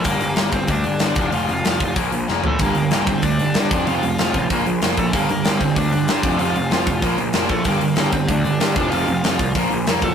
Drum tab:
HH |oooooooo|oooooo--|oooooooo|oooooooo|
SD |--o---o-|--o---o-|--o---o-|--o---o-|
FT |--------|-------o|--------|--------|
BD |o--oo--o|---oo---|o--oo--o|---oo--o|

HH |oooooooo|oooooooo|oooooooo|oooooooo|
SD |--o---o-|--o---o-|--o---o-|--o---o-|
FT |--------|--------|--------|--------|
BD |o--oo--o|---oo--o|o--oo--o|---oo--o|